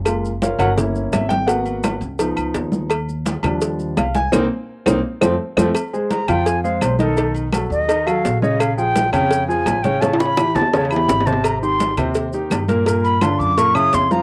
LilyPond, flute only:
\new Staff \with { instrumentName = "Flute" } { \time 4/4 \key ees \dorian \tempo 4 = 169 r1 | r1 | r1 | r1 |
\key f \minor r4 bes''8 g''8 aes''8 f''8 c''8 a'8~ | a'8 r4 dis''4 f''4 dis''8 | f''8 g''4 g''4 aes''4 g''8 | a''8 b''4 a''4 b''4 a''8 |
bes''8 c'''4 r2 r8 | r8 b''8 c'''8 d'''8 des'''8 ees'''8 c'''8 bes''8 | }